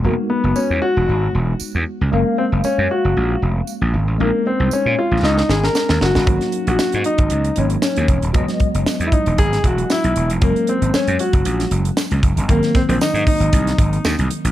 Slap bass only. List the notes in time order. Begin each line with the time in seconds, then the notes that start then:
0.04 E1
0.44 F#1
0.70 E2
0.97 E1
1.09 G#1
1.35 E1
1.61 muted slap bass stroke
1.75 E2
2.01 C#2
2.12 F#1
2.52 F#1
2.78 F#2
3.05 F#1
3.17 A#1
3.42 F1
3.81 A#1
3.94 G#1
4.08 A1
4.20 A#1
4.60 C2
4.86 A#2
5.11 A#1
5.23 C#2
5.49 G#1
5.89 D#2
6.01 F#1
6.16 G1
6.27 G#1
6.67 A#1
6.94 G#2
7.19 G#1
7.31 C#2
7.57 G#1
7.97 D#2
8.09 F1
8.23 D#1
8.35 E1
8.75 F#1
9.00 E2
9.27 E1
9.39 G#1
9.64 E1
10.04 B1
10.16 E1
10.30 F1
10.42 F#1
10.82 G#1
11.08 F#2
11.33 F#1
11.45 A#1
11.71 F#1
12.11 C#2
12.23 F#1
12.37 G1
12.49 G#1
12.89 A#1
13.14 G#2
13.40 G#1
13.53 C2
13.78 G#1
14.05 D#2
14.19 C2
14.44 A#1